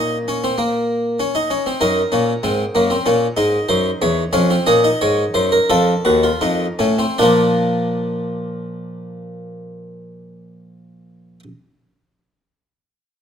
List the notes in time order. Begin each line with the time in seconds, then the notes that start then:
Already playing: A#2 D#4 C#5
0.28 C#4
0.44 C4
0.58 A#3
1.20 C#4
1.35 D#4
1.50 C#4
1.66 C4
1.81 F#2 D#4 A#4
2.12 A#2 C#4
2.43 G#2 C4
2.75 F#2 A#3
2.90 C4
3.06 A#2 C#4
3.37 G#2 D#4
3.69 F#2 C5
4.02 E2 C#5
4.33 F2 C#4 F5
4.50 C4
4.66 A#2 C#4 D#5
4.84 D#4
5.01 G#2 C#5
5.34 F#2 C5
5.52 A#4
5.70 F2 F4 A4
6.05 D#2 F#4
6.23 F4
6.41 F2 D#4
6.79 A2 C#4
6.99 C4
7.18 A#2 F3 A#3 D4 F4